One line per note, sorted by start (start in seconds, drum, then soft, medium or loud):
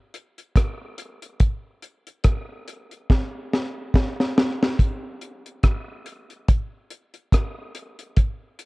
0.14 closed hi-hat medium
0.38 closed hi-hat soft
0.56 kick loud
0.56 cross-stick loud
0.56 closed hi-hat medium
0.98 closed hi-hat medium
1.22 closed hi-hat medium
1.40 kick loud
1.40 closed hi-hat medium
1.82 closed hi-hat medium
2.07 closed hi-hat soft
2.24 kick loud
2.24 cross-stick loud
2.24 closed hi-hat medium
2.68 closed hi-hat medium
2.91 closed hi-hat soft
3.10 kick loud
3.10 snare medium
3.53 snare medium
3.94 kick loud
3.94 snare medium
4.20 snare medium
4.38 snare medium
4.63 snare medium
4.79 kick loud
4.79 closed hi-hat medium
5.21 closed hi-hat medium
5.46 closed hi-hat soft
5.63 kick loud
5.63 cross-stick loud
5.63 closed hi-hat medium
6.06 closed hi-hat medium
6.30 closed hi-hat soft
6.48 kick loud
6.48 closed hi-hat medium
6.90 closed hi-hat medium
7.14 closed hi-hat soft
7.32 kick loud
7.32 cross-stick loud
7.32 closed hi-hat loud
7.75 closed hi-hat medium
7.99 closed hi-hat medium
8.17 kick loud
8.17 closed hi-hat medium
8.59 closed hi-hat medium